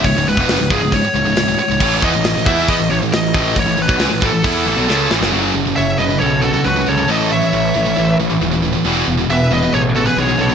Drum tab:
CC |----------------|x---------------|----------------|----------------|
HH |o---o---o---o---|----o---o---o---|o---o---o-------|----------------|
SD |----o-------o---|----o-------o---|----o-------o-oo|----------------|
BD |o--o--o-o-------|o-o---o-o-----o-|o--o--o-o-------|----------------|

CC |----------------|----------------|
HH |----------------|----------------|
SD |----------------|----------------|
BD |----------------|----------------|